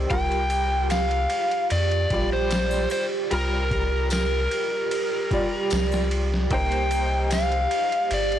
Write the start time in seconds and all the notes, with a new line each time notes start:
Already playing: D#3 C4 G4 D5
0.10 C2 G3 F4 G4 A#4 G5, kick, ride
0.32 ride
0.50 ride, triangle
0.90 F5, snare, ride, tambourine
1.11 ride
1.30 ride
1.51 ride
1.70 F2 D5, ride
1.91 ride
2.10 A#1 G3 F4 D5, kick, ride
2.33 C5
2.51 snare, ride, tambourine
2.71 snare, triangle
2.90 C5, ride, triangle
3.31 C2 G3 F4 A#4, ride
3.71 kick, ride
4.10 A#4, snare, ride, tambourine
4.51 ride
4.91 ride
5.31 G3 F4 D5, kick, ride
5.70 C2, snare, ride, tambourine
5.92 snare, triangle
6.11 ride
6.34 snare
6.51 C2 A#3 D#4 C5 G5, kick, ride
6.72 ride
6.91 ride, triangle
7.31 F5, snare, ride, tambourine
7.52 ride
7.71 ride
7.92 ride
8.11 G1 D5, ride
8.32 ride